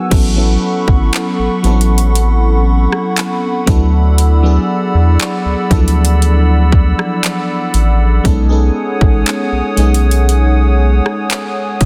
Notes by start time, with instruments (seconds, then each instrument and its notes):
Already playing: fm electric piano F#3 B3 D#4 E4 A#4 B4
0.10 analog synth bass A1, fm electric piano F#3 B3 C#4 E4 A4, analog synth pad A4 F#5 B5 C#6, kick, closed hi-hat, crash
0.36 fm electric piano F#3 B3 C#4 E4 A4
0.88 analog synth bass G#1, kick
1.13 clap, closed hi-hat
1.39 analog synth bass A1
1.63 analog synth bass A1, fm electric piano F#3 B3 C4 E4 A4, closed hi-hat
1.71 fm electric piano C#4
1.81 closed hi-hat
1.98 closed hi-hat
2.15 closed hi-hat
2.92 cross-stick
3.17 clap, closed hi-hat
3.66 analog synth bass D2, fm electric piano F#3 B3 D4 E4 A4, analog synth pad D5 E6, kick, closed hi-hat
4.18 closed hi-hat
4.43 fm electric piano F#3 B3 D4 E4 G#4
4.95 analog synth bass E2
5.20 clap, closed hi-hat
5.45 analog synth bass D2
5.70 analog synth bass D2, fm electric piano F3 B3 D4 E4 A4, kick, closed hi-hat
5.76 fm electric piano F#3
5.88 closed hi-hat
6.05 closed hi-hat
6.22 closed hi-hat
6.72 kick
6.99 cross-stick
7.24 clap, closed hi-hat
7.74 analog synth bass A1, closed hi-hat
8.24 analog synth bass B1, fm electric piano G#3 B3 C#4 D#4 A4, analog synth pad C#5 F#5 G#5 D#6, kick, closed hi-hat
8.49 fm electric piano B3 C#4 D#4 G#4 A4
9.01 analog synth bass A1, kick
9.26 clap, closed hi-hat
9.52 analog synth bass B1
9.76 analog synth bass B1, fm electric piano G#3 B3 C#4 D#4 G#4, closed hi-hat
9.94 closed hi-hat
10.11 closed hi-hat
10.29 closed hi-hat
11.06 cross-stick
11.30 clap, closed hi-hat
11.81 analog synth bass F#1, kick, closed hi-hat